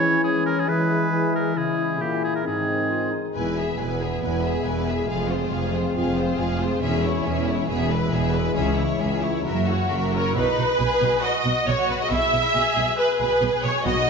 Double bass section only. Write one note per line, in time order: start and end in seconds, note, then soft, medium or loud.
3.36 3.74 E1 soft
3.79 4.18 E1 soft
4.23 4.61 E1 soft
4.66 5.05 E1 soft
5.10 5.48 F1 medium
5.53 5.91 F1 soft
5.96 6.35 F1 medium
6.39 6.78 F1 medium
6.82 7.20 E1 medium
7.25 7.64 E1 medium
7.69 8.08 E1 medium
8.13 8.52 E1 medium
8.57 8.96 C#2 medium
9.01 9.40 C#2 soft
9.46 9.85 F#1 medium
9.90 10.30 F#1 medium
10.35 10.43 B1 medium
10.57 10.65 B1 soft
10.80 10.88 B1 soft
11.02 11.10 B1 medium
11.45 11.53 B1 soft
11.67 11.75 B1 medium
11.89 11.97 B1 soft
12.11 12.19 B1 medium
12.33 12.41 B1 soft
12.55 12.63 B1 soft
12.76 12.84 B1 medium
13.20 13.28 B1 soft
13.42 13.50 B1 medium
13.64 13.72 B1 medium
13.86 13.94 B1 medium